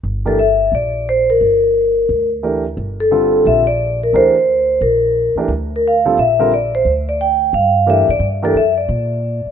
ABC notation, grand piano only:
X:1
M:4/4
L:1/8
Q:"Swing" 1/4=176
K:Gdor
V:1 name="Grand piano"
z [E,A,DGB] z6 | z6 [E,A,DGB] z | z2 [D,G,CFA]3 z3 | [E,A,DGB] z6 [E,A,DGB] |
z3 [D,G,CFA] z [D,G,CFB] z2 | z6 [E,A,DGB] z | z [E,A,DGB] z6 |]